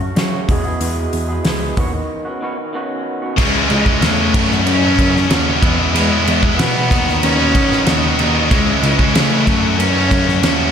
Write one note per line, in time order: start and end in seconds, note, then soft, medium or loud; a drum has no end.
0.01 muted clean electric guitar stroke soft
0.15 0.47 F#2 medium
0.15 0.47 C#3 medium
0.15 0.41 F#3 medium
0.15 0.47 F#3 medium
0.15 0.48 A3 medium
0.15 0.48 C#4 medium
0.15 0.48 F#4 loud
0.15 snare loud
0.15 open hi-hat medium
0.49 0.78 E2 medium
0.49 0.74 E2 medium
0.49 0.79 B2 medium
0.49 0.66 E3 medium
0.49 0.65 G#3 medium
0.49 0.64 B3 medium
0.49 0.63 G#4 medium
0.49 kick loud
0.49 open hi-hat medium
0.64 0.80 E3 soft
0.64 0.80 G#3 medium
0.64 0.81 B3 medium
0.64 0.81 G#4 medium
0.80 1.42 E2 medium
0.80 1.06 E2 medium
0.80 1.43 B2 medium
0.80 1.30 E3 medium
0.80 1.29 G#3 medium
0.80 1.28 B3 medium
0.80 1.27 G#4 medium
0.80 open hi-hat medium
1.13 1.38 E2 medium
1.13 open hi-hat soft
1.29 1.43 E3 soft
1.29 1.44 G#3 soft
1.29 1.44 B3 medium
1.29 1.45 G#4 medium
1.44 1.70 C#2 medium
1.44 1.75 E2 medium
1.44 1.75 B2 medium
1.44 1.75 E3 medium
1.44 1.76 G#3 medium
1.44 1.76 B3 medium
1.44 1.76 G#4 medium
1.44 snare loud
1.44 open hi-hat medium
1.76 2.02 D#2 medium
1.76 2.25 D#3 medium
1.76 1.93 B3 medium
1.76 1.93 C#4 medium
1.76 1.92 F#4 medium
1.76 kick medium
1.76 open hi-hat soft
1.94 muted clean electric guitar stroke soft
2.25 2.41 B3 soft
2.25 2.42 C#4 medium
2.25 2.43 F#4 medium
2.41 2.72 D#3 medium
2.41 2.57 B3 medium
2.41 2.57 C#4 medium
2.41 2.56 F#4 medium
2.57 muted clean electric guitar stroke soft
2.73 3.36 D#3 medium
2.73 3.24 B3 medium
2.73 3.23 C#4 medium
2.73 3.21 F#4 medium
3.22 3.38 B3 medium
3.22 3.37 C#4 medium
3.22 3.36 F#4 medium
3.37 3.67 C#2 medium
3.37 3.67 C#3 loud
3.37 3.54 E3 medium
3.37 3.53 G#3 medium
3.37 3.51 C#4 medium
3.37 kick loud
3.37 crash loud
3.37 crash medium
3.41 3.70 G#3 medium
3.53 3.68 E3 medium
3.53 3.69 G#3 medium
3.53 3.71 C#4 medium
3.68 3.99 C#2 medium
3.68 4.00 C#3 medium
3.68 3.87 E3 medium
3.68 3.86 G#3 medium
3.68 4.06 G#3 medium
3.68 3.84 C#4 medium
3.68 crash medium
3.85 4.01 E3 medium
3.85 4.02 G#3 medium
3.85 4.03 C#4 medium
3.85 kick medium
4.01 4.31 E2 medium
4.01 4.32 C#3 medium
4.01 4.33 E3 medium
4.01 4.33 G#3 medium
4.01 4.67 A3 medium
4.01 4.33 C#4 loud
4.01 snare loud
4.01 crash medium
4.33 4.82 F#2 medium
4.33 4.63 F#2 medium
4.33 4.83 C#3 medium
4.33 4.52 F#3 medium
4.33 4.51 A3 loud
4.33 4.49 C#4 loud
4.33 kick loud
4.33 crash loud
4.51 4.99 F#3 medium
4.51 4.99 A3 medium
4.51 5.00 C#4 medium
4.51 muted distorted electric guitar stroke medium
4.51 snare soft
4.66 4.95 F#2 medium
4.66 5.60 C#4 loud
4.66 crash medium
4.82 4.97 F#3 medium
4.82 4.99 A3 medium
4.82 4.99 C#4 medium
4.99 5.27 F#2 loud
4.99 5.30 C#3 medium
4.99 5.17 F#3 medium
4.99 5.15 A3 medium
4.99 5.14 C#4 medium
4.99 kick loud
4.99 crash medium
5.15 5.31 F#3 medium
5.15 5.31 A3 medium
5.15 5.32 C#4 medium
5.15 muted distorted electric guitar stroke medium
5.15 snare soft
5.30 5.60 D#2 medium
5.30 5.61 F#2 medium
5.30 5.61 C#3 medium
5.30 5.61 F#3 loud
5.30 5.62 A3 loud
5.30 5.62 C#4 loud
5.30 snare loud
5.30 crash medium
5.62 5.91 E2 loud
5.62 5.93 E3 medium
5.62 5.80 G#3 medium
5.62 5.79 B3 loud
5.62 5.78 E4 loud
5.62 kick loud
5.62 crash medium
5.79 5.95 G#3 medium
5.79 5.96 B3 medium
5.79 5.96 E4 medium
5.94 6.23 E2 loud
5.94 6.24 E3 loud
5.94 6.12 G#3 loud
5.94 6.25 G#3 medium
5.94 6.11 B3 loud
5.94 6.09 E4 medium
5.94 crash medium
6.10 6.26 G#3 medium
6.10 6.27 B3 medium
6.10 6.28 E4 medium
6.26 6.56 E2 loud
6.26 6.56 E3 medium
6.26 6.56 G#3 medium
6.26 6.44 G#3 medium
6.26 6.42 B3 medium
6.26 6.41 E4 medium
6.26 crash medium
6.42 6.57 G#3 medium
6.42 6.58 B3 medium
6.42 6.59 E4 medium
6.42 kick medium
6.57 6.88 B2 medium
6.57 6.88 E3 medium
6.57 6.88 G#3 medium
6.57 7.25 B3 loud
6.57 6.89 B3 loud
6.57 6.90 E4 medium
6.57 snare loud
6.57 crash medium
6.90 7.19 D#2 medium
6.90 7.38 D#3 medium
6.90 7.08 F#3 medium
6.90 7.07 B3 loud
6.90 7.05 D#4 loud
6.90 7.05 F#4 medium
6.90 kick loud
6.90 crash medium
7.06 7.54 F#3 medium
7.06 7.54 B3 medium
7.06 7.55 F#4 medium
7.06 muted distorted electric guitar stroke medium
7.06 snare soft
7.23 7.51 D#2 medium
7.23 8.19 C#4 loud
7.23 crash medium
7.38 7.53 F#3 medium
7.38 7.54 B3 medium
7.38 7.55 D#4 medium
7.53 7.84 A1 medium
7.53 7.86 D#3 medium
7.53 7.72 F#3 medium
7.53 7.71 B3 medium
7.53 7.68 D#4 medium
7.53 7.69 F#4 medium
7.53 kick loud
7.53 crash medium
7.69 7.87 F#3 medium
7.69 7.88 B3 medium
7.69 7.88 F#4 medium
7.69 muted distorted electric guitar stroke medium
7.69 snare soft
7.86 8.15 D#2 medium
7.86 8.17 D#3 medium
7.86 8.18 F#3 medium
7.86 8.18 B3 medium
7.86 8.19 D#4 loud
7.86 8.20 F#4 loud
7.86 snare loud
7.86 crash medium
8.18 8.48 D#2 medium
8.18 8.48 D#3 medium
8.18 8.35 F#3 medium
8.18 8.34 B3 medium
8.18 8.49 D#4 medium
8.18 8.32 F#4 medium
8.18 crash medium
8.33 8.50 F#3 medium
8.33 8.49 B3 medium
8.33 8.48 F#4 medium
8.50 8.80 C#2 medium
8.50 8.81 C#3 loud
8.50 9.00 E3 medium
8.50 8.68 G#3 loud
8.50 8.81 G#3 loud
8.50 8.67 C#4 loud
8.50 8.65 E4 loud
8.50 kick loud
8.50 crash medium
8.66 8.83 G#3 medium
8.66 8.84 C#4 medium
8.66 8.85 E4 medium
8.82 9.11 C#2 loud
8.82 9.13 C#3 medium
8.82 9.13 G#3 medium
8.82 9.01 G#3 medium
8.82 8.99 C#4 medium
8.82 8.98 E4 medium
8.82 crash medium
8.99 9.14 E3 medium
8.99 9.14 G#3 medium
8.99 9.15 C#4 medium
8.99 9.15 E4 medium
8.99 kick medium
9.14 9.44 C#3 medium
9.14 9.43 C#3 medium
9.14 9.45 E3 loud
9.14 9.45 G#3 loud
9.14 9.81 A3 loud
9.14 9.46 C#4 loud
9.14 9.46 E4 loud
9.14 snare loud
9.14 crash medium
9.47 9.75 F#2 medium
9.47 9.95 F#2 medium
9.47 9.63 C#3 medium
9.47 9.95 F#3 medium
9.47 9.64 A3 medium
9.47 9.63 C#4 loud
9.47 9.61 F#4 medium
9.47 kick loud
9.47 crash medium
9.63 10.10 A3 medium
9.63 10.11 C#4 medium
9.63 10.12 F#4 medium
9.63 muted distorted electric guitar stroke medium
9.78 10.07 F#2 medium
9.78 10.72 C#4 loud
9.78 crash medium
9.95 10.10 F#3 medium
9.95 10.11 A3 medium
9.95 10.12 C#4 medium
10.10 10.40 F#2 loud
10.10 10.28 C#3 medium
10.10 10.41 F#3 medium
10.10 10.28 A3 medium
10.10 10.27 C#4 medium
10.10 10.25 F#4 medium
10.10 kick medium
10.10 crash medium
10.26 10.42 A3 medium
10.26 10.43 C#4 medium
10.26 10.44 F#4 medium
10.26 muted distorted electric guitar stroke soft
10.26 snare soft
10.42 10.71 D#2 medium
10.42 10.72 F#2 loud
10.42 10.72 C#3 loud
10.42 10.72 F#3 medium
10.42 10.72 A3 medium
10.42 10.72 C#4 medium
10.42 10.72 F#4 loud
10.42 snare loud
10.42 crash medium